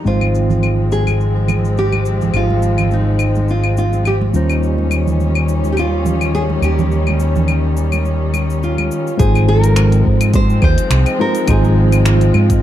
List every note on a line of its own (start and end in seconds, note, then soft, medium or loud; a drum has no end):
0.05 2.31 G#1 medium
0.05 4.30 F3 medium
0.05 4.31 G#3 medium
0.05 4.30 G#3 medium
0.05 4.31 C4 medium
0.05 4.30 C4 medium
0.05 4.31 D#4 medium
0.05 0.88 F4 medium
0.05 4.32 F4 medium
0.05 4.32 C5 medium
0.05 cabasa soft
0.21 high conga medium
0.21 claves medium
0.35 cabasa medium
0.50 low conga medium
0.50 cabasa soft
0.63 high conga medium
0.63 cabasa soft
0.63 claves medium
0.92 1.78 G#4 medium
0.92 cabasa medium
1.07 high conga medium
1.07 cabasa soft
1.07 claves medium
1.21 cabasa soft
1.48 high conga medium
1.48 low conga medium
1.48 cabasa medium
1.48 claves medium
1.65 cabasa soft
1.77 2.36 G4 medium
1.77 cabasa soft
1.92 high conga medium
1.92 claves medium
2.06 cabasa medium
2.21 low conga medium
2.21 cabasa soft
2.34 4.31 G#1 medium
2.34 2.94 F4 medium
2.34 cabasa soft
2.34 claves medium
2.50 high conga medium
2.62 cabasa medium
2.78 low conga medium
2.78 cabasa soft
2.78 claves medium
2.91 3.51 D#4 medium
2.91 high conga medium
2.91 cabasa soft
3.19 cabasa medium
3.19 claves medium
3.35 high conga medium
3.35 cabasa soft
3.48 3.76 F4 medium
3.48 cabasa soft
3.64 claves medium
3.77 4.07 F4 medium
3.77 high conga medium
3.77 cabasa medium
3.93 cabasa soft
4.05 4.15 G4 medium
4.05 cabasa soft
4.05 claves medium
4.21 high conga medium
4.33 6.60 D#2 medium
4.33 9.16 D#3 medium
4.33 8.88 G3 medium
4.33 9.16 G3 medium
4.33 8.88 C#4 medium
4.33 9.16 C#4 medium
4.33 8.88 D#4 medium
4.33 5.45 D#4 medium
4.33 8.89 F4 medium
4.33 8.89 C5 medium
4.33 cabasa medium
4.50 cabasa soft
4.50 claves medium
4.63 cabasa soft
4.78 high conga medium
4.91 cabasa medium
4.91 claves medium
5.07 low conga medium
5.07 cabasa soft
5.20 high conga medium
5.20 cabasa soft
5.35 claves medium
5.49 cabasa medium
5.64 high conga medium
5.64 cabasa soft
5.72 5.78 G4 medium
5.77 6.31 F4 medium
5.77 cabasa soft
5.77 claves medium
6.05 high conga medium
6.05 low conga medium
6.05 cabasa medium
6.21 cabasa soft
6.21 claves medium
6.35 6.42 G#4 loud
6.35 cabasa soft
6.50 high conga medium
6.62 8.88 D#2 medium
6.62 8.88 G4 medium
6.62 cabasa medium
6.62 claves medium
6.79 low conga medium
6.79 cabasa soft
6.92 cabasa soft
7.07 high conga medium
7.07 claves medium
7.20 cabasa medium
7.36 low conga medium
7.36 cabasa soft
7.48 high conga medium
7.48 cabasa soft
7.48 claves medium
7.77 cabasa medium
7.92 high conga medium
7.92 cabasa soft
7.92 claves medium
8.05 cabasa soft
8.34 high conga medium
8.34 cabasa medium
8.34 claves medium
8.50 cabasa soft
8.63 9.16 F4 medium
8.63 cabasa soft
8.78 high conga medium
8.78 claves medium
8.91 cabasa medium
9.07 cabasa soft
9.17 10.02 G#1 loud
9.17 12.62 F3 medium
9.17 11.16 G#3 medium
9.17 12.62 G#3 medium
9.17 11.16 C4 medium
9.17 12.62 C4 medium
9.17 11.16 D#4 medium
9.17 11.17 F4 medium
9.17 9.48 G#4 loud
9.17 11.17 C5 loud
9.17 kick loud
9.17 closed hi-hat medium
9.17 cabasa medium
9.35 cabasa soft
9.35 claves medium
9.48 10.02 A#4 loud
9.64 closed hi-hat soft
9.64 cabasa medium
9.76 finger snap loud
9.76 closed hi-hat medium
9.76 cabasa medium
9.76 claves medium
9.92 closed hi-hat soft
9.92 cabasa soft
10.05 10.59 G#2 medium
10.05 kick medium
10.21 closed hi-hat soft
10.21 cabasa medium
10.21 claves medium
10.34 10.63 C5 loud
10.34 kick loud
10.34 closed hi-hat medium
10.34 cabasa medium
10.50 cabasa soft
10.62 10.75 D#2 medium
10.62 11.21 C5 loud
10.62 kick loud
10.62 claves medium
10.78 closed hi-hat soft
10.78 cabasa medium
10.90 11.03 C2 medium
10.90 finger snap loud
10.90 closed hi-hat medium
10.90 cabasa medium
11.06 closed hi-hat soft
11.06 cabasa soft
11.06 claves medium
11.19 11.45 G#3 medium
11.19 11.45 C4 medium
11.19 11.45 D#4 medium
11.19 11.45 F4 medium
11.19 11.50 A#4 medium
11.19 11.45 C5 medium
11.35 closed hi-hat soft
11.35 cabasa medium
11.47 12.30 G#1 loud
11.47 12.62 G#3 medium
11.47 12.62 C4 medium
11.47 12.62 D#4 medium
11.47 12.62 F4 medium
11.47 12.03 G#4 loud
11.47 12.62 C5 medium
11.47 kick loud
11.47 closed hi-hat medium
11.47 cabasa medium
11.47 claves medium
11.64 cabasa soft
11.92 closed hi-hat soft
11.92 cabasa medium
11.92 claves medium
12.05 12.62 F4 medium
12.05 finger snap loud
12.05 closed hi-hat medium
12.05 cabasa medium
12.21 closed hi-hat soft
12.21 cabasa soft
12.34 12.58 G#2 medium
12.34 claves medium
12.50 kick medium
12.50 closed hi-hat soft
12.50 cabasa medium